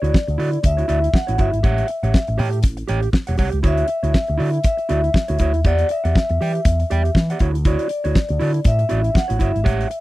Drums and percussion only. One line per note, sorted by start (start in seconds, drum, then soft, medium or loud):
0.04 closed hi-hat soft
0.14 kick loud
0.14 snare loud
0.28 closed hi-hat soft
0.40 open hi-hat medium
0.53 closed hi-hat medium
0.64 kick loud
0.64 closed hi-hat loud
0.78 closed hi-hat soft
0.89 closed hi-hat medium
1.04 closed hi-hat medium
1.14 kick loud
1.14 snare loud
1.28 closed hi-hat medium
1.38 kick loud
1.38 closed hi-hat medium
1.54 closed hi-hat soft
1.64 kick loud
1.64 closed hi-hat medium
1.78 closed hi-hat soft
1.88 closed hi-hat medium
2.04 closed hi-hat soft
2.14 kick loud
2.14 snare loud
2.27 closed hi-hat soft
2.39 open hi-hat medium
2.53 closed hi-hat soft
2.63 kick loud
2.63 snare soft
2.63 closed hi-hat loud
2.77 closed hi-hat medium
2.88 closed hi-hat medium
3.03 closed hi-hat soft
3.13 kick loud
3.13 snare loud
3.27 closed hi-hat medium
3.37 kick loud
3.37 open hi-hat medium
3.52 closed hi-hat soft
3.63 kick loud
3.63 closed hi-hat medium
3.78 closed hi-hat medium
3.88 closed hi-hat medium
4.04 closed hi-hat soft
4.14 kick loud
4.14 snare loud
4.27 closed hi-hat soft
4.40 open hi-hat medium
4.54 closed hi-hat medium
4.64 kick loud
4.64 snare soft
4.64 closed hi-hat loud
4.78 closed hi-hat soft
4.89 closed hi-hat medium
5.04 closed hi-hat soft
5.14 kick loud
5.14 snare loud
5.28 closed hi-hat medium
5.39 kick loud
5.39 closed hi-hat medium
5.54 closed hi-hat soft
5.64 kick loud
5.64 closed hi-hat medium
5.79 closed hi-hat medium
5.89 closed hi-hat medium
6.05 closed hi-hat medium
6.15 kick loud
6.15 snare loud
6.29 closed hi-hat soft
6.42 open hi-hat medium
6.55 closed hi-hat soft
6.65 kick loud
6.65 snare soft
6.65 closed hi-hat medium
6.80 closed hi-hat medium
6.91 closed hi-hat medium
7.05 closed hi-hat soft
7.15 kick loud
7.15 snare loud
7.30 closed hi-hat medium
7.39 kick loud
7.39 closed hi-hat medium
7.55 closed hi-hat medium
7.65 kick loud
7.65 closed hi-hat medium
7.79 closed hi-hat medium
7.89 closed hi-hat medium
8.05 closed hi-hat soft
8.15 kick loud
8.15 snare loud
8.29 closed hi-hat soft
8.41 open hi-hat medium
8.54 closed hi-hat medium
8.64 kick loud
8.64 snare soft
8.64 closed hi-hat medium
8.79 closed hi-hat medium
8.89 closed hi-hat medium
9.04 closed hi-hat soft
9.15 kick loud
9.15 snare loud
9.30 closed hi-hat medium
9.40 kick medium
9.40 closed hi-hat medium
9.56 closed hi-hat soft
9.66 kick loud
9.66 closed hi-hat medium
9.81 closed hi-hat medium
9.91 closed hi-hat medium